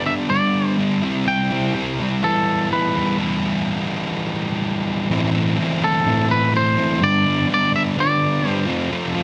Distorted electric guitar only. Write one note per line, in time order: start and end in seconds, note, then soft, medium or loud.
0.00 0.29 D3 medium
0.06 0.30 G3 medium
0.06 0.30 B3 medium
0.06 0.31 D4 medium
0.29 1.01 G2 medium
0.29 0.76 D3 medium
0.29 0.78 G3 medium
0.29 0.78 B3 medium
0.29 0.79 D4 loud
0.78 1.01 D3 medium
0.78 1.04 G3 medium
0.78 1.02 B3 medium
0.78 1.02 D4 medium
1.02 1.25 C3 medium
1.02 1.25 G3 medium
1.02 1.27 C4 medium
1.02 1.27 E4 medium
1.26 1.73 C3 medium
1.26 1.52 G3 medium
1.26 1.50 C4 medium
1.26 1.49 E4 medium
1.50 1.73 G3 medium
1.50 1.74 C4 medium
1.50 1.75 E4 medium
1.74 2.21 C3 medium
1.74 2.00 G3 medium
1.74 1.99 C4 medium
1.74 1.98 E4 medium
1.99 2.21 G3 medium
1.99 2.22 C4 medium
1.99 2.22 E4 medium
2.22 2.69 E3 medium
2.22 2.69 G3 loud
2.22 2.70 B3 loud
2.22 2.71 E4 medium
2.70 3.17 E3 medium
2.70 2.97 G3 medium
2.70 2.96 B3 medium
2.70 2.94 E4 medium
2.95 3.19 G3 medium
2.95 3.19 B3 medium
2.95 3.18 E4 medium
3.19 5.09 E3 medium
3.19 5.09 G3 medium
3.19 5.10 B3 medium
3.19 5.10 E4 medium
5.10 5.58 A2 medium
5.10 5.56 E3 loud
5.10 5.35 A3 medium
5.10 5.34 C4 medium
5.10 5.32 E4 loud
5.33 5.56 A3 medium
5.33 5.58 C4 medium
5.33 5.59 E4 medium
5.57 6.05 E3 medium
5.57 5.83 A3 medium
5.57 5.82 C4 medium
5.57 5.80 E4 medium
5.82 6.06 A3 medium
5.82 6.06 C4 medium
5.82 6.07 E4 medium
6.05 6.77 A2 loud
6.05 6.52 E3 medium
6.05 6.52 A3 loud
6.05 6.53 C4 loud
6.05 6.53 E4 loud
6.53 7.00 E3 medium
6.53 6.78 A3 medium
6.53 6.77 C4 medium
6.53 6.76 E4 medium
6.77 7.01 A3 medium
6.77 7.01 C4 medium
6.77 7.00 E4 medium
7.00 7.49 G2 medium
7.00 7.47 D3 loud
7.00 7.25 G3 medium
7.00 7.24 B3 medium
7.00 7.23 D4 loud
7.24 7.47 G3 medium
7.24 7.49 B3 medium
7.24 7.49 D4 medium
7.48 7.96 D3 medium
7.48 7.73 G3 medium
7.48 7.72 B3 medium
7.48 7.71 D4 loud
7.72 7.96 G3 medium
7.72 7.97 B3 medium
7.72 7.97 D4 medium
7.96 8.67 G2 medium
7.96 8.41 D3 loud
7.96 8.43 G3 loud
7.96 8.44 B3 loud
7.96 8.45 D4 loud
8.42 8.66 D3 medium
8.42 8.67 G3 medium
8.42 8.67 B3 medium
8.42 8.65 D4 medium
8.66 8.89 F3 medium
8.66 8.90 A3 medium
8.66 8.92 C4 medium
8.66 8.91 F4 loud
8.90 9.23 F3 medium
8.90 9.16 A3 loud
8.90 9.16 C4 medium
8.90 9.14 F4 loud
9.15 9.23 A3 medium
9.15 9.23 C4 medium
9.15 9.23 F4 medium